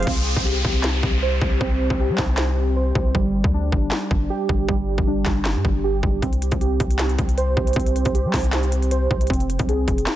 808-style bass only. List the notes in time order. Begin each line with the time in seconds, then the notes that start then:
0.07 C2
0.36 C2
0.65 C2
1.03 C2
1.41 C2
1.61 C2
1.90 C2
2.09 G3
2.18 C2
2.95 C2
3.15 G1
3.44 D2
3.72 G1
4.11 G1
4.49 G1
4.69 G1
4.98 G1
5.26 G1
5.56 G2
5.65 G1
6.03 G1
6.22 C2
6.52 C2
6.80 C2
7.19 C2
7.57 C2
7.76 C2
8.06 C2
8.25 G3
8.34 C2
9.11 C2
9.30 F1
9.59 C2
9.88 F1